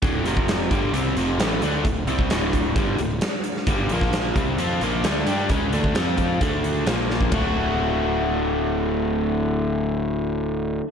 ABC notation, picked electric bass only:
X:1
M:4/4
L:1/8
Q:1/4=132
K:Glyd
V:1 name="Picked electric bass" clef=bass
D,,, =F,,,2 G,,, =C,, F,,, A,,, D,, | D,,, =C,, D,,,2 G,,, D,,, z2 | G,,, _B,,,2 =C,, =F,, B,,, D,, G,, | C,, D,, =F,,2 D,,2 _B,,,2 |
D,,,8- | D,,,8 |]